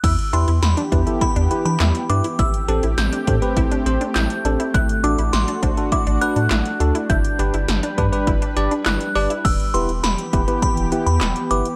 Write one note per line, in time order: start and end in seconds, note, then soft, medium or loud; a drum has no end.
0.04 0.15 E2 loud
0.04 2.37 E3 medium
0.04 2.37 B3 medium
0.04 0.27 E4 loud
0.04 2.37 G4 medium
0.04 0.34 E6 loud
0.04 kick loud
0.04 closed hi-hat medium
0.04 crash loud
0.19 closed hi-hat medium
0.33 0.45 E2 loud
0.33 0.45 D4 medium
0.33 0.49 E4 medium
0.33 0.49 G4 medium
0.33 0.49 B4 medium
0.33 0.64 C6 medium
0.33 closed hi-hat medium
0.48 0.60 E2 loud
0.48 0.71 E4 medium
0.48 closed hi-hat medium
0.62 0.74 E2 loud
0.62 1.20 B5 medium
0.62 snare loud
0.62 closed hi-hat medium
0.77 0.89 D4 medium
0.77 closed hi-hat medium
0.92 1.04 E2 loud
0.92 1.15 D4 medium
0.92 1.00 E4 medium
0.92 1.00 G4 medium
0.92 1.00 B4 medium
0.92 kick medium
0.92 closed hi-hat medium
1.07 1.22 E4 medium
1.07 1.22 G4 medium
1.07 1.22 A4 medium
1.07 closed hi-hat medium
1.21 1.33 E4 medium
1.21 1.64 B5 medium
1.21 kick medium
1.21 closed hi-hat medium
1.36 1.48 E2 medium
1.36 1.59 D4 medium
1.36 closed hi-hat medium
1.51 1.66 E4 medium
1.51 1.66 G4 medium
1.51 1.66 B4 medium
1.51 closed hi-hat medium
1.65 1.77 E3 loud
1.65 1.77 D4 medium
1.65 2.11 B5 medium
1.65 closed hi-hat medium
1.80 1.92 E2 loud
1.80 2.03 E4 medium
1.80 snare loud
1.80 clap medium
1.80 closed hi-hat medium
1.95 closed hi-hat medium
2.10 2.21 G2 medium
2.10 2.21 D4 medium
2.10 2.25 E4 medium
2.10 2.25 G4 medium
2.10 2.25 B4 medium
2.10 2.37 D6 loud
2.10 closed hi-hat medium
2.24 2.36 E4 medium
2.24 closed hi-hat medium
2.39 2.51 A1 loud
2.39 7.06 A3 medium
2.39 4.72 C4 medium
2.39 2.62 E4 loud
2.39 4.72 G4 loud
2.39 3.00 E6 loud
2.39 kick loud
2.39 closed hi-hat medium
2.54 closed hi-hat medium
2.68 2.80 A1 loud
2.68 2.84 C4 medium
2.68 2.80 D4 medium
2.68 2.84 G4 medium
2.68 2.84 A4 medium
2.68 closed hi-hat medium
2.83 2.95 A1 loud
2.83 3.06 E4 medium
2.83 closed hi-hat medium
2.98 3.09 A1 loud
2.98 4.14 G6 loud
2.98 snare loud
2.98 closed hi-hat medium
3.13 3.24 D4 medium
3.13 closed hi-hat medium
3.27 3.39 A2 loud
3.27 3.35 C4 medium
3.27 3.50 D4 medium
3.27 3.35 G4 medium
3.27 3.35 A4 medium
3.27 kick medium
3.27 closed hi-hat medium
3.42 3.58 C4 medium
3.42 3.58 G4 medium
3.42 3.58 B4 medium
3.42 closed hi-hat medium
3.57 3.68 A1 loud
3.57 3.68 E4 medium
3.57 kick medium
3.57 closed hi-hat medium
3.72 3.95 D4 medium
3.72 closed hi-hat medium
3.86 3.98 A1 loud
3.86 4.02 C4 medium
3.86 4.02 G4 medium
3.86 4.02 C5 loud
3.86 closed hi-hat medium
4.01 4.12 D4 medium
4.01 closed hi-hat medium
4.15 4.27 A1 loud
4.15 4.39 E4 medium
4.15 4.76 G6 loud
4.15 snare loud
4.15 clap medium
4.15 closed hi-hat medium
4.30 closed hi-hat medium
4.45 4.57 A1 loud
4.45 4.61 C4 medium
4.45 4.57 D4 medium
4.45 4.61 G4 medium
4.45 4.61 A4 medium
4.45 closed hi-hat medium
4.60 4.71 E4 medium
4.60 closed hi-hat medium
4.74 4.86 A1 loud
4.74 9.41 D4 medium
4.74 4.98 E4 loud
4.74 7.07 F#4 medium
4.74 5.02 F#6 loud
4.74 kick loud
4.74 closed hi-hat medium
4.89 closed hi-hat medium
5.04 5.15 A1 loud
5.04 5.19 D4 medium
5.04 5.15 D4 medium
5.04 5.19 F#4 medium
5.04 5.19 A4 medium
5.04 5.34 D6 medium
5.04 closed hi-hat medium
5.18 5.30 A1 loud
5.18 5.42 E4 medium
5.18 closed hi-hat medium
5.33 5.45 A1 loud
5.33 5.94 C6 medium
5.33 snare loud
5.33 closed hi-hat medium
5.48 5.60 D4 medium
5.48 closed hi-hat medium
5.63 5.74 A1 loud
5.63 5.70 D4 medium
5.63 5.86 D4 medium
5.63 5.70 F#4 medium
5.63 5.70 C5 medium
5.63 kick medium
5.63 closed hi-hat medium
5.77 5.93 D4 medium
5.77 5.93 F#4 medium
5.77 5.93 A4 medium
5.77 closed hi-hat medium
5.92 6.04 E4 medium
5.92 6.19 D6 loud
5.92 kick medium
5.92 closed hi-hat medium
6.07 6.18 A1 loud
6.07 6.30 D4 medium
6.07 closed hi-hat medium
6.21 6.37 D4 medium
6.21 6.37 F#4 medium
6.21 6.37 B4 medium
6.21 7.12 F#6 loud
6.21 closed hi-hat medium
6.36 6.48 A2 loud
6.36 6.48 D4 medium
6.36 closed hi-hat medium
6.51 6.62 A1 medium
6.51 6.74 E4 medium
6.51 snare loud
6.51 clap loud
6.51 closed hi-hat medium
6.65 closed hi-hat medium
6.80 6.92 D2 medium
6.80 6.96 D4 medium
6.80 6.92 D4 medium
6.80 6.96 F#4 medium
6.80 6.96 A4 medium
6.80 closed hi-hat medium
6.95 7.06 E4 medium
6.95 closed hi-hat medium
7.10 7.21 G1 loud
7.10 9.43 G3 medium
7.10 7.33 E4 loud
7.10 9.43 B4 medium
7.10 8.82 G6 medium
7.10 kick loud
7.10 closed hi-hat medium
7.25 closed hi-hat medium
7.39 7.51 G1 loud
7.39 7.55 D4 medium
7.39 7.51 D4 medium
7.39 7.55 G4 medium
7.39 7.55 B4 medium
7.39 closed hi-hat medium
7.54 7.65 G1 loud
7.54 7.77 E4 medium
7.54 closed hi-hat soft
7.68 7.80 G1 loud
7.68 snare loud
7.68 closed hi-hat medium
7.83 7.95 D4 medium
7.83 closed hi-hat medium
7.98 8.10 G2 loud
7.98 8.06 D4 medium
7.98 8.21 D4 medium
7.98 8.06 G4 medium
7.98 8.06 B4 loud
7.98 kick medium
7.98 closed hi-hat medium
8.12 8.28 D4 medium
8.12 8.28 G4 medium
8.12 8.28 B4 medium
8.12 closed hi-hat medium
8.27 8.39 G1 loud
8.27 8.39 E4 medium
8.27 kick loud
8.27 closed hi-hat medium
8.42 8.65 D4 medium
8.42 closed hi-hat medium
8.57 8.68 G1 loud
8.57 8.72 D4 medium
8.57 8.72 G4 medium
8.57 8.72 D5 loud
8.57 closed hi-hat medium
8.71 8.83 D4 medium
8.71 closed hi-hat medium
8.86 8.98 G1 loud
8.86 9.09 E4 medium
8.86 9.47 F#6 loud
8.86 snare loud
8.86 clap medium
8.86 closed hi-hat medium
9.01 closed hi-hat medium
9.15 9.27 G1 loud
9.15 9.27 D4 medium
9.15 9.31 D4 medium
9.15 9.31 G4 medium
9.15 9.31 D5 loud
9.15 open hi-hat medium
9.30 9.42 E4 medium
9.30 closed hi-hat medium
9.45 9.56 E1 loud
9.45 11.76 E3 medium
9.45 11.76 B3 medium
9.45 11.76 G4 medium
9.45 9.75 E6 loud
9.45 kick loud
9.45 closed hi-hat medium
9.45 crash loud
9.60 closed hi-hat medium
9.74 9.86 E1 loud
9.74 9.90 B3 medium
9.74 9.90 E4 medium
9.74 9.90 G4 medium
9.74 9.90 B4 medium
9.74 9.87 C6 medium
9.74 closed hi-hat medium
9.89 10.01 E1 medium
9.89 closed hi-hat medium
10.03 10.15 E1 loud
10.03 10.61 B5 medium
10.03 snare loud
10.03 closed hi-hat medium
10.18 closed hi-hat medium
10.33 10.45 E1 loud
10.33 10.41 B3 medium
10.33 10.41 E4 medium
10.33 10.41 G4 medium
10.33 10.41 B4 medium
10.33 kick medium
10.33 closed hi-hat medium
10.48 10.63 B3 medium
10.48 10.63 E4 medium
10.48 10.63 G4 medium
10.48 10.63 B4 medium
10.48 closed hi-hat medium
10.62 11.05 B5 medium
10.62 kick medium
10.62 closed hi-hat medium
10.77 10.89 E1 loud
10.77 closed hi-hat medium
10.92 11.08 B3 medium
10.92 11.08 E4 medium
10.92 11.08 G4 medium
10.92 11.08 B4 medium
10.92 closed hi-hat medium
11.06 11.18 E2 loud
11.06 11.52 B5 loud
11.06 closed hi-hat medium
11.21 11.33 E1 medium
11.21 snare loud
11.21 clap medium
11.21 closed hi-hat medium
11.36 closed hi-hat medium
11.51 11.62 G1 loud
11.51 11.66 B3 medium
11.51 11.66 E4 medium
11.51 11.66 G4 medium
11.51 11.66 B4 medium
11.51 11.76 D6 loud
11.51 closed hi-hat medium
11.65 closed hi-hat medium